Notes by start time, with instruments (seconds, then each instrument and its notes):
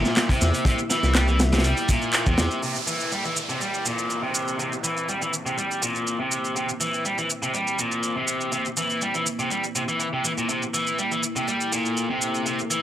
Already playing: overdriven electric guitar A#2, ambient pad A#3 E4 E5
0.05 snare, shaker
0.17 snare, clap, closed hi-hat, shaker
0.29 overdriven electric guitar C3, kick, closed hi-hat
0.41 detuned saw bass E2, snare, shaker
0.54 closed hi-hat, shaker
0.65 overdriven electric guitar C3, kick, closed hi-hat, shaker
0.79 shaker
0.90 overdriven electric guitar E3, snare, closed hi-hat, shaker
1.03 detuned saw bass C2, snare, shaker
1.15 overdriven electric guitar G3, snare, clap, closed hi-hat, shaker
1.28 overdriven electric guitar E3, shaker
1.39 snare, closed hi-hat, shaker
1.53 overdriven electric guitar C3, snare, closed hi-hat, shaker
1.58 snare, closed hi-hat
1.64 overdriven electric guitar G3, closed hi-hat, shaker
1.77 closed hi-hat, shaker
1.89 overdriven electric guitar A#2, kick, closed hi-hat, shaker
2.02 shaker
2.13 clap, closed hi-hat, shaker
2.26 detuned saw bass E2, overdriven electric guitar C3, kick, shaker
2.38 detuned saw bass E2, snare, closed hi-hat, shaker
2.51 shaker
2.63 overdriven electric guitar C3, ambient pad A#3 E4 C5, downlifter, shaker
2.76 shaker
2.87 overdriven electric guitar E3, shaker
3.00 shaker
3.12 overdriven electric guitar G3, shaker
3.25 overdriven electric guitar E3, shaker
3.36 shaker
3.49 overdriven electric guitar C3, shaker
3.61 overdriven electric guitar G3, shaker
3.74 shaker
3.85 overdriven electric guitar A#2, shaker
3.98 shaker
4.10 shaker
4.23 overdriven electric guitar C3
4.35 shaker
4.48 shaker
4.59 overdriven electric guitar C3, shaker
4.73 shaker
4.84 overdriven electric guitar E3, shaker
4.97 shaker
5.09 overdriven electric guitar G3, shaker
5.22 overdriven electric guitar E3, shaker
5.33 shaker
5.46 overdriven electric guitar C3, shaker
5.57 overdriven electric guitar G3, shaker
5.71 shaker
5.82 overdriven electric guitar A#2, shaker
5.95 shaker
6.07 shaker
6.20 overdriven electric guitar C3
6.31 shaker
6.45 shaker
6.56 overdriven electric guitar C3, shaker
6.69 shaker
6.80 overdriven electric guitar E3, shaker
6.94 shaker
7.05 overdriven electric guitar G3, shaker
7.18 overdriven electric guitar E3, shaker
7.30 shaker
7.43 overdriven electric guitar C3, shaker
7.54 overdriven electric guitar G3, shaker
7.67 shaker
7.79 overdriven electric guitar A#2, shaker
7.92 shaker
8.03 shaker
8.17 overdriven electric guitar C3
8.28 shaker
8.41 shaker
8.52 overdriven electric guitar C3, shaker
8.65 shaker
8.77 overdriven electric guitar E3, shaker
8.90 shaker
9.01 overdriven electric guitar G3, shaker
9.14 overdriven electric guitar E3, shaker
9.26 shaker
9.39 overdriven electric guitar C3, shaker
9.51 overdriven electric guitar G3, shaker
9.64 shaker
9.75 overdriven electric guitar C3, shaker
9.88 overdriven electric guitar E3, shaker
10.00 overdriven electric guitar E3, shaker
10.13 overdriven electric guitar C3
10.25 overdriven electric guitar E3, shaker
10.38 overdriven electric guitar A#2, shaker
10.49 overdriven electric guitar C3, ambient pad A4, shaker
10.62 shaker
10.74 overdriven electric guitar E3, shaker
10.87 shaker
10.99 overdriven electric guitar G3, shaker
11.12 overdriven electric guitar E3, shaker
11.23 shaker
11.36 overdriven electric guitar C3, shaker
11.48 overdriven electric guitar G3, shaker
11.61 shaker
11.72 overdriven electric guitar A#2, shaker
11.85 shaker
11.97 shaker
12.10 overdriven electric guitar C3
12.22 shaker
12.34 shaker
12.46 overdriven electric guitar C3, shaker
12.59 shaker
12.71 overdriven electric guitar E3, shaker